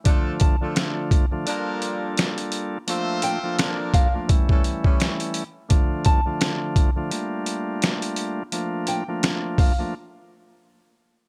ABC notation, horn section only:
X:1
M:4/4
L:1/16
Q:"Swing 16ths" 1/4=85
K:Dm
V:1 name="Horn section"
[F,A,DA]2 z [F,A,DA]3 z2 [F,B,DB]4 z4 | [A,CFc]4 [F,B,DB]4 z [E,A,^CA] z [E,G,CG]2 z3 | z16 | z16 |]